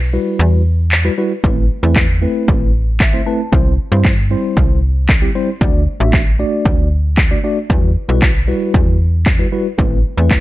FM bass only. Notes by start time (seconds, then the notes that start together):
Already playing: B1
0.39 E2
1.44 A1
1.83 E2
2.48 A1
3.53 C2
3.92 G2
4.57 C2
5.61 D2
6.00 A1
6.65 D2
7.70 E2
8.09 B1
8.74 E2
9.79 A1
10.18 E2